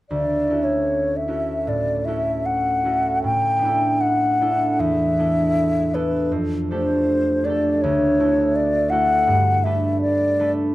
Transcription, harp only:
0.10 D2
0.48 C#4 E4 A4
0.53 F#4
1.28 C#4 E4 F#4 A4
1.67 A2
2.07 C#4 E4 F#4 A4
2.85 C#4 E4 F#4 A4
3.24 A2
3.59 B3 D4
3.65 E4 A4
4.40 B3 D4 E4 A4
4.79 E2
5.19 B3 D4 E4 A4
5.93 B3 D4 E4 A4
6.32 F2
6.71 A3 D4 G4 A4
7.44 A3 D4 G4
7.50 A4
7.83 D2
8.20 A3 E4 F#4 A4
8.91 A3 E4 F#4 A4
9.27 G2
9.65 A3 D4 A4 B4
10.39 A3 D4 A4 B4

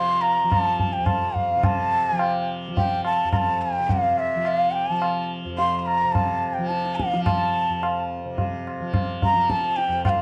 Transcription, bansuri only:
Already playing: C6
0.21 A#5
0.50 A#5
0.61 A5
0.93 G5
1.06 A5
1.36 F5
1.65 A5
2.10 G#5
2.21 G5
2.78 G5
3.06 A5
3.32 A#5
3.36 A5
3.62 G5
3.91 F5
4.19 E5
4.47 F5
4.75 A5
5.58 C6
5.79 C6
5.86 A#5
6.12 A5
6.53 G5
6.68 A5
6.96 F5
7.24 A5
9.24 A#5
9.50 A5
9.76 G5
10.05 G5
10.10 F5

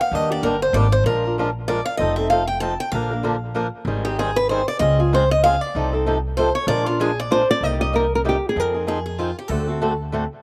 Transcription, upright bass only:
0.12 D#2
0.43 G1
0.73 G#1
1.04 A#1
1.99 F1
2.92 A#1
3.85 G#1
4.80 C#2
5.75 C2
6.67 A#1
7.61 C2
8.56 F2
9.49 D2

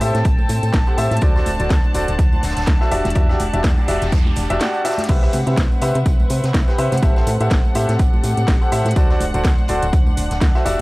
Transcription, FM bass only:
0.01 A2
0.15 A2
0.25 A1
0.49 A2
0.63 A2
0.74 A1
0.98 A2
1.11 A2
1.22 D2
1.46 D1
1.60 D1
1.70 D2
1.95 D1
2.08 D1
2.19 D2
2.43 D1
2.57 D1
2.67 D2
2.91 E1
3.05 E1
3.16 E2
3.40 E1
3.53 E1
3.64 E2
3.88 E1
4.02 E1
4.12 E2
4.37 E1
4.50 E1
5.09 C2
5.33 C3
5.47 C3
5.58 C2
5.82 C3
5.95 C3
6.06 C2
6.30 C3
6.44 C3
6.54 C2
6.78 C3
6.92 C3
7.03 A1
7.27 A2
7.40 A2
7.51 A1
7.75 A2
7.89 A2
7.99 A1
8.24 A2
8.37 A2
8.48 A1
8.72 A2
8.86 A2
8.96 D2
9.21 D1
9.34 D1
9.45 D2
9.69 D1
9.82 D1
9.93 D2
10.17 D1
10.31 D1
10.41 D2
10.66 E1

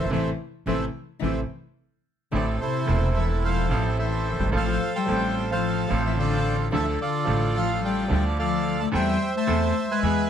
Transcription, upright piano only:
0.04 G#1
0.10 C3 E3 A3
0.67 C3 E3 A3
1.22 C3 E3 A3
2.32 A1 A2 E3 A3 C4 A4
2.85 E1 E2 E3 A3 C4
2.89 A4
3.68 A1 A2 E3 A3 C4 A4
4.31 F#1
4.40 G1
4.46 G#1
4.52 A1 A2 F3 A3 C4 A4
5.06 A1 A2 F3 A3 C4 A4
5.88 A1 A2 F3 A3 C4 A4
6.72 D2 D3 F3 A3 D4 A4
7.25 A1 A2 F3 A3 D4
7.29 A4
8.08 D2 D3 F3 A3 D4 A4
8.92 E2 E3 A3 C4 A4
9.47 E2 E3 A3 C4 A4
10.03 E2 E3 G#3 B3 G#4

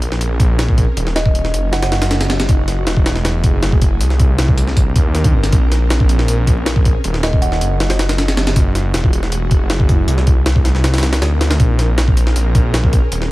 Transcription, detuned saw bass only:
Already playing: A#1
0.20 A#1
0.96 D#1
1.53 F#1
2.49 F#1
2.86 E1
3.53 F#1
4.00 C2
4.96 D#2
5.33 G1
5.52 A#1
6.28 A#1
7.04 D#1
7.61 F#1
8.56 F#1
8.94 E1
9.61 F#1
10.08 C2
11.22 D2
11.60 A#1
12.36 A#1
13.12 D#1

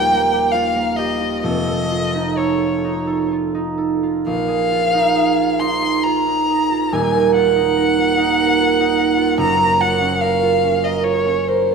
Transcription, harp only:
Already playing: D#1 D#2 A#3 F4 G4
0.13 A#3
0.34 G4
0.54 F4
0.76 A#3
0.99 G4
1.21 F4
1.43 F1 F2
1.68 A4
1.92 F4
2.15 D#4
2.38 A4
2.60 F4
2.84 D#4
3.07 A4
3.31 F4
3.55 D#4
3.78 A4
4.03 F4
4.26 A#1
4.48 G#4
4.71 F4
4.94 D#4
5.16 G#4
5.39 F4
5.60 D#4
5.82 G#4
6.06 F4
6.27 D#4
6.50 G#4
6.72 F4
6.92 D#1 D#2
7.14 A#4
7.35 F4
7.56 D#4
7.77 A#4
7.98 F4
8.18 D#4
8.40 A#4
8.60 F4
8.80 D#4
8.99 A#4
9.17 F4
9.38 F#1 F#2
9.59 A#4
9.80 F4
10.01 C#4
10.22 A#4
10.43 F4
10.64 C#4
10.84 A#4
11.05 F4
11.26 C#4
11.48 A#4
11.71 F4

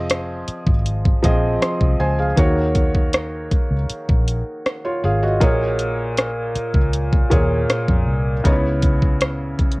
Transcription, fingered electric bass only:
Already playing: F1
0.48 muted fingered electric bass stroke
0.66 G#1
1.24 A#1
1.81 C2
2.00 C#2
2.38 D#2
3.52 muted fingered electric bass stroke
3.71 C#2
4.09 A#1
5.04 G#1
5.41 A#1
6.55 muted fingered electric bass stroke
6.74 C#2
7.32 D#2
7.88 F2
8.07 C2
8.45 C#2
9.59 muted fingered electric bass stroke

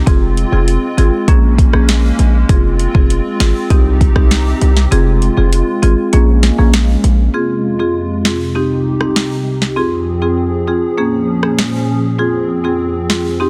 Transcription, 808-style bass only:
0.07 F1
0.52 F1
0.98 G#1
1.28 A#1
1.74 A#1
2.19 A#1
2.49 F1
2.95 F1
3.40 G#1
3.70 C2
4.16 C2
4.62 C2
4.92 F1
5.37 F1
5.83 G#1
6.13 A#1
6.58 A#1
7.04 A#1

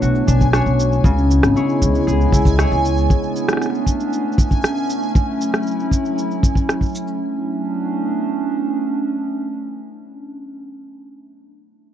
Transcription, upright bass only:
0.02 B1
0.28 B1
0.66 B1
1.04 C#2
1.43 G#1
1.82 C#2
2.07 C#2
2.32 C#2
2.71 C#2

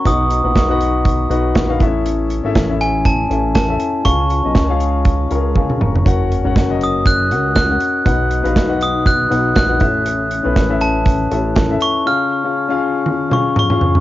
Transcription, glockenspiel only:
0.07 D#6
2.81 G#5
3.06 A5
3.55 A5
4.05 C#6
6.83 D#6
7.07 F#6
7.56 F#6
8.83 D#6
9.07 F#6
9.56 F#6
10.81 A5
11.82 C#6
12.07 F6
13.33 C#6
13.59 C#6

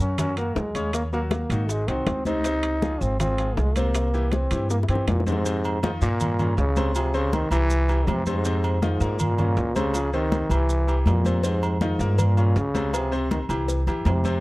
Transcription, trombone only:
0.01 C#4
0.19 C#4
0.38 A#3
0.57 G#3
0.94 A#3
1.13 A#3
1.32 A#3
1.69 G#3
1.88 C4
2.26 D#4
3.01 C4
3.21 C4
3.57 G#3
3.76 A#3
4.33 C4
4.71 A#3
4.89 C4
5.08 A#2
5.27 G#2
5.83 G#2
6.02 A#2
6.58 C#3
6.95 C3
7.14 C#3
7.33 D#3
7.52 E3
8.09 C3
8.27 G#2
8.83 G#2
9.21 A#2
9.77 C#3
10.14 D#3
10.52 E3
11.07 A#2
11.45 G#2
11.82 G#2
12.20 A#2
12.57 C#3
12.95 C3
13.32 D#3
14.07 C3

